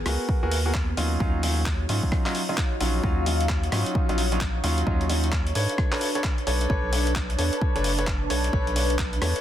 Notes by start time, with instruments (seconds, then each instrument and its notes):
Already playing: analog synth pad B3 G#4 A#4 F#5
0.06 sub bass C#2, grand piano B3 F#4 G#4 A#4, cross-stick, open hi-hat
0.29 kick
0.43 sub bass D#2, grand piano B3 F#4 G#4 A#4
0.52 open hi-hat
0.66 grand piano B3 F#4 G#4 A#4
0.74 kick, clap
0.97 sub bass D#2, grand piano F#3 C#4 D#4 F4, analog synth pad D#4, open hi-hat
1.10 analog synth pad F#4 C#5
1.20 sub bass D#2, grand piano F#3 C#4 D#4 F4, kick
1.43 grand piano F#3 C#4 D#4 F4, open hi-hat
1.66 kick, clap
1.89 sub bass G#2, grand piano F#3 C#4 D#4 F4, open hi-hat
2.03 kick
2.12 analog synth pad F5, kick, cross-stick
2.26 grand piano F#3 C#4 D#4 F4, clap, open hi-hat
2.35 open hi-hat
2.49 grand piano F#3 C#4 D#4 F4
2.58 kick, clap
2.80 sub bass A#1, grand piano F#3 C#4 D#4 F4, open hi-hat
3.03 sub bass D#2, grand piano F#3 C#4 D#4 F4, kick
3.26 grand piano F#3 C#4 D#4 F4, open hi-hat
3.41 closed hi-hat
3.49 kick, clap
3.63 closed hi-hat
3.72 sub bass G#2, grand piano F#3 C#4 D#4 F4, cross-stick, open hi-hat
3.86 closed hi-hat
3.95 kick
4.09 sub bass A#1, grand piano F#3 C#4 D#4 F4, closed hi-hat
4.18 open hi-hat
4.32 grand piano F#3 C#4 D#4 F4, closed hi-hat
4.41 kick, clap
4.64 sub bass D#2, grand piano F#3 C#4 D#4 F4, open hi-hat
4.78 closed hi-hat
4.86 sub bass D#2, grand piano F#3 C#4 D#4 F4, kick
5.01 closed hi-hat
5.09 grand piano F#3 C#4 D#4 F4, open hi-hat
5.24 closed hi-hat
5.32 kick, clap
5.47 closed hi-hat
5.55 sub bass G#2, grand piano D4 A4 B4 C#5, open hi-hat
5.69 closed hi-hat
5.78 analog synth pad D4, kick, cross-stick
5.92 grand piano D4 A4 B4 C#5, clap, open hi-hat
6.01 open hi-hat
6.15 grand piano D4 A4 B4 C#5, closed hi-hat
6.24 kick, clap
6.29 analog synth pad B4
6.38 analog synth pad A5, closed hi-hat
6.47 sub bass B1, grand piano D4 A4 B4 C#5, open hi-hat
6.61 closed hi-hat
6.70 sub bass B1, grand piano D4 A4 B4 C#5, kick
6.93 grand piano D4 A4 B4 C#5, open hi-hat
7.07 closed hi-hat
7.16 kick, clap
7.30 closed hi-hat
7.38 sub bass E2, grand piano D4 A4 B4 C#5, open hi-hat
7.53 closed hi-hat
7.61 kick
7.76 sub bass F#1, grand piano D4 A4 B4 C#5, closed hi-hat
7.84 open hi-hat
7.99 grand piano D4 A4 B4 C#5, closed hi-hat
8.07 kick, clap
8.30 sub bass B1, grand piano D4 A4 B4 C#5, open hi-hat
8.44 closed hi-hat
8.53 sub bass B1, grand piano D4 A4 B4 C#5, kick
8.67 closed hi-hat
8.76 grand piano D4 A4 B4 C#5, open hi-hat
8.90 closed hi-hat
8.99 kick, clap
9.13 closed hi-hat
9.22 sub bass E2, grand piano D4 A4 B4 C#5, cross-stick, open hi-hat
9.36 closed hi-hat